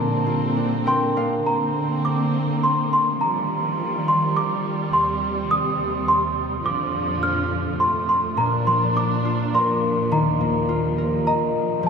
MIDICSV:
0, 0, Header, 1, 4, 480
1, 0, Start_track
1, 0, Key_signature, -2, "major"
1, 0, Tempo, 588235
1, 1182, Time_signature, 3, 2, 24, 8
1, 2135, Tempo, 575816
1, 9868, End_track
2, 0, Start_track
2, 0, Title_t, "Celesta"
2, 0, Program_c, 0, 8
2, 0, Note_on_c, 0, 82, 74
2, 670, Note_off_c, 0, 82, 0
2, 715, Note_on_c, 0, 84, 75
2, 1195, Note_on_c, 0, 82, 74
2, 1204, Note_off_c, 0, 84, 0
2, 1672, Note_on_c, 0, 86, 81
2, 1678, Note_off_c, 0, 82, 0
2, 2150, Note_on_c, 0, 84, 75
2, 2156, Note_off_c, 0, 86, 0
2, 2387, Note_off_c, 0, 84, 0
2, 2397, Note_on_c, 0, 84, 78
2, 2630, Note_on_c, 0, 82, 77
2, 2633, Note_off_c, 0, 84, 0
2, 3357, Note_on_c, 0, 84, 81
2, 3359, Note_off_c, 0, 82, 0
2, 3568, Note_off_c, 0, 84, 0
2, 3593, Note_on_c, 0, 86, 85
2, 4066, Note_on_c, 0, 84, 88
2, 4073, Note_off_c, 0, 86, 0
2, 4497, Note_off_c, 0, 84, 0
2, 4547, Note_on_c, 0, 87, 91
2, 5022, Note_off_c, 0, 87, 0
2, 5025, Note_on_c, 0, 84, 86
2, 5457, Note_off_c, 0, 84, 0
2, 5503, Note_on_c, 0, 86, 83
2, 5980, Note_on_c, 0, 89, 91
2, 5986, Note_off_c, 0, 86, 0
2, 6456, Note_on_c, 0, 84, 79
2, 6468, Note_off_c, 0, 89, 0
2, 6688, Note_off_c, 0, 84, 0
2, 6698, Note_on_c, 0, 84, 79
2, 6919, Note_off_c, 0, 84, 0
2, 6937, Note_on_c, 0, 82, 78
2, 7160, Note_off_c, 0, 82, 0
2, 7183, Note_on_c, 0, 84, 80
2, 7290, Note_off_c, 0, 84, 0
2, 7430, Note_on_c, 0, 86, 84
2, 7913, Note_on_c, 0, 84, 80
2, 7922, Note_off_c, 0, 86, 0
2, 8391, Note_on_c, 0, 82, 79
2, 8404, Note_off_c, 0, 84, 0
2, 9311, Note_off_c, 0, 82, 0
2, 9350, Note_on_c, 0, 82, 78
2, 9835, Note_off_c, 0, 82, 0
2, 9868, End_track
3, 0, Start_track
3, 0, Title_t, "Harp"
3, 0, Program_c, 1, 46
3, 0, Note_on_c, 1, 46, 58
3, 0, Note_on_c, 1, 62, 44
3, 0, Note_on_c, 1, 65, 51
3, 0, Note_on_c, 1, 72, 53
3, 0, Note_on_c, 1, 77, 53
3, 159, Note_off_c, 1, 65, 0
3, 216, Note_on_c, 1, 65, 51
3, 415, Note_off_c, 1, 72, 0
3, 458, Note_off_c, 1, 62, 0
3, 461, Note_on_c, 1, 62, 45
3, 635, Note_off_c, 1, 77, 0
3, 702, Note_on_c, 1, 70, 51
3, 709, Note_on_c, 1, 79, 66
3, 947, Note_off_c, 1, 62, 0
3, 950, Note_on_c, 1, 62, 48
3, 955, Note_on_c, 1, 77, 58
3, 1224, Note_off_c, 1, 46, 0
3, 1976, Note_off_c, 1, 79, 0
3, 2277, Note_off_c, 1, 65, 0
3, 2317, Note_off_c, 1, 77, 0
3, 2439, Note_off_c, 1, 70, 0
3, 3258, Note_off_c, 1, 62, 0
3, 6931, Note_on_c, 1, 46, 57
3, 7176, Note_on_c, 1, 53, 43
3, 7416, Note_on_c, 1, 62, 46
3, 7665, Note_on_c, 1, 65, 50
3, 7908, Note_on_c, 1, 70, 54
3, 8386, Note_on_c, 1, 51, 61
3, 8425, Note_off_c, 1, 46, 0
3, 8425, Note_off_c, 1, 53, 0
3, 8436, Note_off_c, 1, 62, 0
3, 8628, Note_on_c, 1, 58, 45
3, 8859, Note_off_c, 1, 65, 0
3, 8863, Note_on_c, 1, 65, 53
3, 9105, Note_off_c, 1, 70, 0
3, 9108, Note_on_c, 1, 70, 50
3, 9347, Note_on_c, 1, 75, 54
3, 9815, Note_on_c, 1, 53, 59
3, 9858, Note_off_c, 1, 51, 0
3, 9868, Note_off_c, 1, 53, 0
3, 9868, Note_off_c, 1, 58, 0
3, 9868, Note_off_c, 1, 65, 0
3, 9868, Note_off_c, 1, 70, 0
3, 9868, Note_off_c, 1, 75, 0
3, 9868, End_track
4, 0, Start_track
4, 0, Title_t, "String section"
4, 0, Program_c, 2, 48
4, 0, Note_on_c, 2, 50, 69
4, 0, Note_on_c, 2, 58, 63
4, 0, Note_on_c, 2, 60, 71
4, 1169, Note_off_c, 2, 58, 0
4, 1169, Note_off_c, 2, 60, 0
4, 1171, Note_off_c, 2, 50, 0
4, 1182, Note_on_c, 2, 50, 69
4, 1182, Note_on_c, 2, 60, 71
4, 1185, Note_on_c, 2, 58, 63
4, 2600, Note_off_c, 2, 50, 0
4, 2600, Note_off_c, 2, 60, 0
4, 2602, Note_off_c, 2, 58, 0
4, 2616, Note_on_c, 2, 53, 63
4, 2618, Note_on_c, 2, 51, 69
4, 2619, Note_on_c, 2, 55, 73
4, 4033, Note_off_c, 2, 53, 0
4, 4034, Note_off_c, 2, 51, 0
4, 4040, Note_on_c, 2, 39, 71
4, 4041, Note_on_c, 2, 48, 64
4, 5448, Note_off_c, 2, 55, 0
4, 5457, Note_off_c, 2, 39, 0
4, 5457, Note_off_c, 2, 48, 0
4, 5482, Note_on_c, 2, 46, 61
4, 5485, Note_on_c, 2, 41, 66
4, 5485, Note_on_c, 2, 50, 58
4, 5485, Note_on_c, 2, 53, 76
4, 6437, Note_off_c, 2, 46, 0
4, 6439, Note_off_c, 2, 50, 0
4, 6439, Note_off_c, 2, 53, 0
4, 6442, Note_on_c, 2, 48, 52
4, 6445, Note_on_c, 2, 57, 63
4, 6920, Note_off_c, 2, 41, 0
4, 6924, Note_off_c, 2, 48, 0
4, 6926, Note_off_c, 2, 57, 0
4, 6929, Note_on_c, 2, 53, 58
4, 6931, Note_on_c, 2, 46, 67
4, 6932, Note_on_c, 2, 62, 75
4, 8370, Note_off_c, 2, 62, 0
4, 8383, Note_on_c, 2, 39, 69
4, 9789, Note_off_c, 2, 46, 0
4, 9802, Note_off_c, 2, 39, 0
4, 9818, Note_on_c, 2, 45, 69
4, 9821, Note_on_c, 2, 55, 76
4, 9868, Note_off_c, 2, 45, 0
4, 9868, Note_off_c, 2, 53, 0
4, 9868, Note_off_c, 2, 55, 0
4, 9868, End_track
0, 0, End_of_file